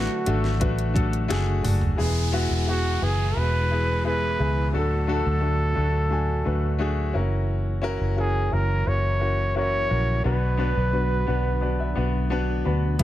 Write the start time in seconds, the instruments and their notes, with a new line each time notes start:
Already playing: grand piano A2 A3 D4 F#4 A4 B4, tonewheel organ D3 F#3 A3 D4 F#4, trumpet F#4
0.26 fingered electric bass G#1, grand piano A3 D4 F#4 A4, closed hi-hat
0.44 snare
0.60 fingered electric bass A1, grand piano A3 D4 F#4 B4, kick, closed hi-hat
0.79 closed hi-hat
0.94 grand piano A3 D4 F#4 A4, kick, closed hi-hat
1.13 closed hi-hat
1.28 fingered electric bass F#1, grand piano A3 D4 F#4 G#4, snare, closed hi-hat
1.63 fingered electric bass F#1, grand piano A3 D4 F#4 A4, mid tom, open hi-hat
1.81 floor tom
1.96 fingered electric bass E1, tonewheel organ B2 E3 G#3 E4 G#4, grand piano E3 G#3 B3 E4 G#4, downlifter
2.32 grand piano G#3 B3 E4 F#4
2.50 fingered electric bass E1
2.67 grand piano G#3 B3 E4 G#4, trumpet F#4
3.00 fingered electric bass F#1, grand piano G#3 B3 E4 B4, trumpet G#4
3.35 fingered electric bass E1, grand piano G#3 B3 E4 F#4, trumpet B4
3.70 grand piano G#3 B3 E4 G#4
4.03 grand piano G#3 B3 E4 G#4, trumpet B4
4.38 fingered electric bass C#2, grand piano G#3 B3 E4 G#4
4.72 fingered electric bass D2, tonewheel organ A2 D3 F#3 D4 F#4, grand piano D3 A3 D4 F#4 A4
4.76 trumpet A4
5.07 grand piano A3 D4 F#4 A4
5.26 fingered electric bass D2
5.41 grand piano A3 D4 F#4 A4
5.75 fingered electric bass D2, grand piano A3 D4 F#4 A4
6.10 grand piano A3 D4 F#4 G#5
6.45 fingered electric bass D2, grand piano A3 D4 F#4 B4
6.79 grand piano A3 D4 F#4 G#4
7.14 fingered electric bass F#1, tonewheel organ C#3 E3 A#3 E4, grand piano C#4 E4 F#4 A#4
7.82 grand piano C#4 E4 F#4 A#4
8.01 fingered electric bass F#1
8.17 grand piano C#4 E4 F#4 A#4, trumpet G#4
8.51 fingered electric bass F#1, grand piano C#4 E4 F#4 A#4, trumpet A#4
8.86 fingered electric bass F#1, grand piano C#4 E4 F#4 A#4, trumpet C#5
9.20 grand piano C#4 E4 F#4 A#4
9.55 grand piano C#4 E4 F#4 A#4, trumpet C#5
9.89 fingered electric bass A#1, grand piano C#4 E4 F#4 A#4
10.24 fingered electric bass B1, tonewheel organ B2 D3 D4, grand piano B2 B3 D4 F#4 B4, trumpet B4
10.57 grand piano B3 D4 F#4 B4
10.77 fingered electric bass B1
10.92 grand piano B3 D4 F#4 B4
11.27 fingered electric bass B1, grand piano B3 D4 F#4 B4 F#5
11.61 grand piano B3 D4 F#4 B4 D5
11.80 grand piano E5
11.95 fingered electric bass B1, grand piano B3 D4 F#4 B4 F#5
12.30 grand piano B3 D4 F#4 B4 A5
12.65 fingered electric bass D2, grand piano B3 D4 F#4 B4 B5
12.99 fingered electric bass E1, grand piano E3 B3 E4, tonewheel organ B3 E4, kick, closed hi-hat